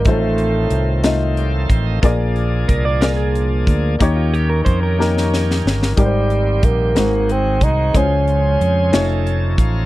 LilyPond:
<<
  \new Staff \with { instrumentName = "Clean electric guitar" } { \time 6/8 \key aes \major \tempo 4. = 61 r2. | r4 bes'16 d''16 bes'16 aes'4~ aes'16 | r16 f'16 g'16 bes'16 c''16 bes'4. r16 | r2. |
r2. | }
  \new Staff \with { instrumentName = "Grand piano" } { \time 6/8 \key aes \major <a ees' f' c''>4 r8 <a ees' f' ees''>4 r8 | <bes f' aes' d''>4 r8 <bes f' aes' d''>4 r8 | <bes ees' g' des''>4 r8 <bes ees' g' bes'>4 r8 | <g ees' g' bes' c''>4 r8 <aes ees' ges' c''>4 r8 |
<aes des' fes' f' c''>4 r8 <a ees' f' cis''>4 r8 | }
  \new Staff \with { instrumentName = "Grand piano" } { \clef bass \time 6/8 \key aes \major a,4. r4. | bes,4. r4. | ees4. r4. | aes,4. aes,4. |
des4. r4. | }
  \new Staff \with { instrumentName = "Tonewheel organ" } { \time 6/8 \key aes \major << { r2 g'16 a'16 c''16 ees''16~ | ees''16 r2 r8. | r2. | r2. |
r2 a''8 f''8 | } \\ { <ees a c' f'>2. | <f bes d' aes'>2. | <ees bes des' g'>2. | <ees g c' g'>4. <ees aes c' ges'>4. |
<f des' aes' c''>4. <f cis' ees' aes' a'>4. | } >> }
  \new Staff \with { instrumentName = "Bassoon" } { \time 6/8 \key aes \major a4. r4. | r2. | r2. | g4 bes4 c'8 ees'8 |
des'2~ des'8 r8 | }
  \new Staff \with { instrumentName = "Fingered electric bass" } { \clef bass \time 6/8 \key aes \major a,,4 c,4. a,,8 | bes,,4 c,4. d,8 | ees,4 f,4. g,,8 | aes,,4 bes,,8 aes,,4 c,8 |
des,4 f,8 f,,4 a,,8 | }
  \new DrumStaff \with { instrumentName = "Drums" } \drummode { \time 6/8 <hh bd>8 hh8 hh8 <hh sn>8 hh8 <hh bd>8 | <hh bd>8 hh8 <hh bd>8 <hh sn>8 hh8 <hh bd>8 | <hh bd>8 hh8 <hh bd>8 sn16 sn16 sn16 sn16 sn16 sn16 | <hh bd>8 hh8 <hh bd>8 <hh sn>8 hh8 <hh bd>8 |
<hh bd>8 hh8 hh8 <hh sn>8 hh8 <hh bd>8 | }
>>